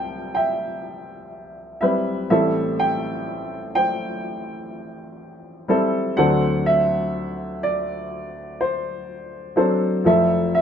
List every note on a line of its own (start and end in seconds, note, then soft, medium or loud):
0.00 2.27 C2 medium
0.00 2.27 C3 medium
0.00 1.82 G3 medium
0.00 1.82 C4 medium
0.00 1.82 E4 medium
0.00 1.83 B4 medium
0.00 0.33 G5 medium
0.00 2.32 A5 medium
0.35 1.79 E5 medium
0.35 1.86 G5 medium
1.81 2.22 G3 medium
1.81 2.22 C4 soft
1.81 2.22 E4 medium
1.81 2.22 B4 medium
1.81 2.29 E5 medium
2.30 6.13 A1 soft
2.30 6.13 A2 medium
2.30 3.89 G3 medium
2.30 3.89 C4 medium
2.30 3.90 E4 medium
2.30 3.90 A4 medium
2.30 3.75 C5 soft
2.30 2.80 E5 medium
2.79 3.72 G5 medium
3.75 5.65 C5 soft
3.75 5.65 G5 medium
5.68 6.08 G3 medium
5.68 6.09 C4 medium
5.68 6.09 E4 medium
5.68 6.09 A4 medium
6.17 10.01 D2 medium
6.17 10.01 D3 medium
6.17 7.76 F#3 medium
6.17 7.76 C4 medium
6.17 7.76 D4 medium
6.17 7.77 A4 medium
6.17 8.07 C5 medium
6.17 6.62 F#5 medium
6.66 7.65 E5 medium
7.63 8.62 D5 medium
8.61 9.55 C5 medium
9.56 9.96 F#3 medium
9.56 9.96 C4 soft
9.56 9.97 D4 medium
9.56 9.97 A4 medium
9.56 10.07 C5 medium
10.04 10.62 F1 medium
10.04 10.62 F2 medium
10.04 10.62 F3 medium
10.04 10.62 C4 medium
10.04 10.62 E4 soft
10.04 10.62 A4 medium
10.04 10.53 E5 medium
10.55 10.62 E5 medium